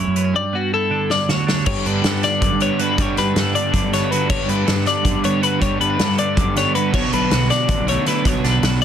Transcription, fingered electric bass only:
0.07 0.34 F#2 medium
1.66 1.75 G2 loud
1.86 2.03 G2 medium
2.05 2.22 G2 loud
2.42 2.50 F#2 medium
2.52 2.69 G2 medium
2.98 3.07 G2 loud
3.18 3.35 G2 medium
3.36 3.54 G2 loud
3.74 3.82 F#2 medium
3.84 4.01 G2 medium
4.30 4.39 G2 loud
4.49 4.66 G2 loud
4.68 4.85 G2 loud
5.05 5.14 F#2 medium
5.15 5.32 G2 medium
5.62 5.70 G2 medium
5.81 5.98 G2 medium
6.00 6.17 G2 loud
6.38 6.46 F#2 medium
6.46 6.64 G2 medium
6.94 7.02 B1 medium
7.13 7.30 B1 medium
7.33 7.49 B1 loud
7.69 7.77 A1 medium
7.80 7.96 B1 medium
8.26 8.34 B1 medium
8.44 8.62 B1 medium
8.63 8.80 B1 loud

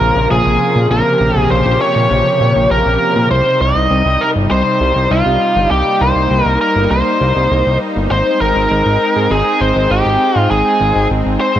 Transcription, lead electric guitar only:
0.00 0.27 A#4 loud
0.31 0.87 G#4 loud
0.91 1.38 A#4 loud
1.38 1.51 G#4 loud
1.51 1.81 C5 loud
1.81 2.71 C#5 loud
2.71 3.27 A#4 loud
3.31 3.59 C5 loud
3.61 4.23 D#5 loud
4.21 4.29 A#4 loud
4.51 5.13 C5 loud
5.11 5.71 F4 medium
5.71 6.02 G4 loud
6.01 6.44 C5 loud
6.44 6.57 A#4 loud
6.61 6.91 A#4 loud
6.91 7.77 C5 loud
8.11 8.39 C5 loud
8.41 9.34 A#4 loud
9.31 9.62 G#4 loud
9.61 9.89 C5 loud
9.91 10.39 G4 medium
10.39 10.50 F4 medium
10.51 11.07 G#4 medium
11.41 11.60 C5 loud

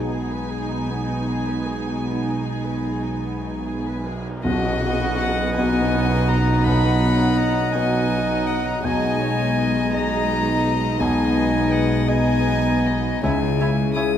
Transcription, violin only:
4.44 5.15 D#5 medium
5.18 5.54 F#5 medium
5.55 6.30 G#5 medium
6.28 6.66 A#5 medium
6.64 7.39 B5 medium
7.37 7.74 A#5 medium
7.73 8.49 G#5 medium
8.47 8.67 F#5 medium
8.66 8.83 A#5 medium
8.84 9.90 G#5 medium
9.93 11.02 A#5 loud
11.00 11.74 G#5 medium
11.73 12.10 F#5 medium
12.09 12.88 G#5 medium
12.86 13.23 D#5 medium
13.24 13.94 G#5 medium
13.94 14.18 D#6 medium

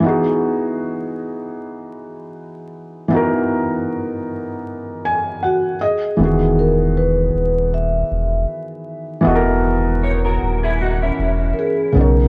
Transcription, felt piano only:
0.00 3.05 E3 medium
0.00 3.06 B3 medium
0.04 3.07 D#4 medium
0.04 3.08 F#4 medium
0.08 3.09 G#4 medium
3.08 5.75 E3 medium
3.08 5.76 B3 medium
3.08 5.77 D#4 medium
3.14 5.78 F#4 medium
3.14 5.79 A#4 medium
5.05 5.40 G#5 medium
5.43 5.78 F#5 medium
5.81 6.16 D#5 medium
6.17 9.19 E3 medium
6.17 9.21 B3 medium
6.21 9.23 D#3 medium
6.21 9.24 F#4 medium
6.25 9.25 G#4 medium
9.21 11.89 E3 medium
9.21 11.90 B3 medium
9.21 11.91 D#5 medium
9.27 11.92 F#4 medium
9.27 9.35 A4 medium
9.35 11.96 A#4 medium
11.92 12.28 C#3 medium
11.92 12.28 B3 medium
11.96 12.28 C#4 medium
11.96 12.28 D#4 medium
12.01 12.28 C#5 medium

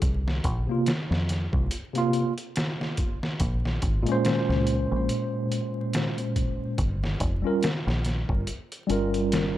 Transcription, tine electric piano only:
0.67 0.88 C3 medium
0.67 0.89 A#3 medium
0.71 0.90 F4 medium
1.93 2.30 C3 medium
1.93 2.31 A#3 medium
1.98 2.33 F4 loud
4.03 6.74 A#2 loud
4.03 6.75 G#3 medium
4.09 6.77 C#4 medium
4.09 6.79 C5 loud
7.42 7.64 G3 medium
7.42 7.64 C#4 medium
7.42 7.65 F4 medium
7.47 7.66 A#4 medium
8.87 9.58 G3 medium
8.87 9.58 C#4 medium
8.87 9.58 F4 medium
8.92 9.58 A#4 medium

